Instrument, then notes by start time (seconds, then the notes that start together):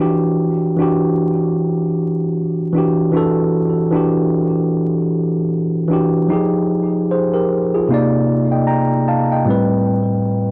tine electric piano
Already playing: E3
0.00 D4 F#4 G4
0.77 E3 D4 F#4
0.82 G4
2.73 E3 D4 F#4
2.78 G4
3.11 E3 D4 F#4
3.17 A4
3.91 E3 D4 F#4
3.96 G4
5.88 E3 D4 F#4
5.93 G4
6.28 F3 D#4 G4
6.33 G#4
7.11 G#4 C5
7.34 G4 A#4
7.75 F4 G#4
7.89 C3 A#3 D#4
7.94 D5
8.52 D#5 G5
8.67 G5 A#5
9.08 F5 A5
9.32 D#5 G5
9.45 A2 G3 C4
9.50 B4